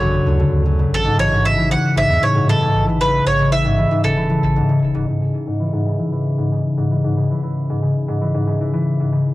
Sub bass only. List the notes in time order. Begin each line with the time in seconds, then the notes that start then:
Already playing: A1
0.27 D2
0.53 D2
0.91 A1
1.18 A1
1.96 A1
2.09 E2
2.22 A2
2.75 A1
3.26 A1
4.04 E1
4.43 A1
4.82 E1
4.95 E1